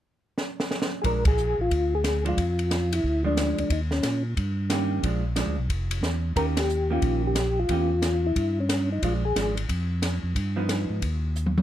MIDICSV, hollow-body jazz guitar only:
0, 0, Header, 1, 2, 480
1, 0, Start_track
1, 0, Tempo, 332594
1, 1497, Time_signature, 4, 2, 24, 8
1, 16774, End_track
2, 0, Start_track
2, 0, Title_t, "Hollow-body jazz guitar"
2, 0, Program_c, 0, 26
2, 1494, Note_on_c, 0, 53, 50
2, 1510, Note_on_c, 0, 56, 57
2, 1520, Note_on_c, 0, 62, 59
2, 1771, Note_off_c, 0, 53, 0
2, 1779, Note_off_c, 0, 56, 0
2, 1784, Note_off_c, 0, 62, 0
2, 3249, Note_on_c, 0, 53, 57
2, 3255, Note_on_c, 0, 56, 61
2, 3263, Note_on_c, 0, 62, 64
2, 3404, Note_off_c, 0, 53, 0
2, 3407, Note_off_c, 0, 56, 0
2, 3411, Note_off_c, 0, 62, 0
2, 4682, Note_on_c, 0, 53, 54
2, 4685, Note_on_c, 0, 56, 62
2, 4694, Note_on_c, 0, 62, 64
2, 5304, Note_off_c, 0, 53, 0
2, 5305, Note_off_c, 0, 56, 0
2, 5310, Note_off_c, 0, 62, 0
2, 6787, Note_on_c, 0, 51, 56
2, 6791, Note_on_c, 0, 58, 56
2, 6795, Note_on_c, 0, 61, 62
2, 6801, Note_on_c, 0, 67, 64
2, 7261, Note_off_c, 0, 51, 0
2, 7266, Note_off_c, 0, 58, 0
2, 7267, Note_off_c, 0, 61, 0
2, 7267, Note_on_c, 0, 53, 50
2, 7271, Note_off_c, 0, 67, 0
2, 7277, Note_on_c, 0, 56, 53
2, 7285, Note_on_c, 0, 62, 52
2, 7539, Note_off_c, 0, 53, 0
2, 7544, Note_off_c, 0, 56, 0
2, 7548, Note_off_c, 0, 62, 0
2, 7732, Note_on_c, 0, 53, 58
2, 7743, Note_on_c, 0, 56, 56
2, 7752, Note_on_c, 0, 62, 64
2, 8011, Note_off_c, 0, 53, 0
2, 8016, Note_off_c, 0, 56, 0
2, 8021, Note_off_c, 0, 62, 0
2, 9178, Note_on_c, 0, 51, 50
2, 9183, Note_on_c, 0, 58, 51
2, 9183, Note_on_c, 0, 61, 56
2, 9192, Note_on_c, 0, 67, 62
2, 9454, Note_off_c, 0, 51, 0
2, 9456, Note_off_c, 0, 58, 0
2, 9456, Note_off_c, 0, 61, 0
2, 9460, Note_off_c, 0, 67, 0
2, 9963, Note_on_c, 0, 51, 58
2, 9967, Note_on_c, 0, 58, 63
2, 9980, Note_on_c, 0, 61, 59
2, 9980, Note_on_c, 0, 67, 60
2, 10583, Note_off_c, 0, 51, 0
2, 10585, Note_off_c, 0, 58, 0
2, 10591, Note_off_c, 0, 61, 0
2, 10592, Note_off_c, 0, 67, 0
2, 11116, Note_on_c, 0, 52, 50
2, 11119, Note_on_c, 0, 58, 49
2, 11129, Note_on_c, 0, 61, 60
2, 11130, Note_on_c, 0, 67, 58
2, 11382, Note_off_c, 0, 52, 0
2, 11383, Note_off_c, 0, 58, 0
2, 11389, Note_off_c, 0, 61, 0
2, 11389, Note_off_c, 0, 67, 0
2, 13034, Note_on_c, 0, 53, 51
2, 13046, Note_on_c, 0, 56, 51
2, 13051, Note_on_c, 0, 62, 58
2, 13301, Note_off_c, 0, 53, 0
2, 13306, Note_off_c, 0, 56, 0
2, 13309, Note_off_c, 0, 62, 0
2, 13506, Note_on_c, 0, 53, 47
2, 13514, Note_on_c, 0, 56, 52
2, 13524, Note_on_c, 0, 62, 51
2, 13777, Note_off_c, 0, 53, 0
2, 13781, Note_off_c, 0, 56, 0
2, 13785, Note_off_c, 0, 62, 0
2, 15243, Note_on_c, 0, 53, 59
2, 15251, Note_on_c, 0, 59, 65
2, 15258, Note_on_c, 0, 63, 63
2, 15862, Note_off_c, 0, 53, 0
2, 15867, Note_off_c, 0, 59, 0
2, 15870, Note_off_c, 0, 63, 0
2, 16774, End_track
0, 0, End_of_file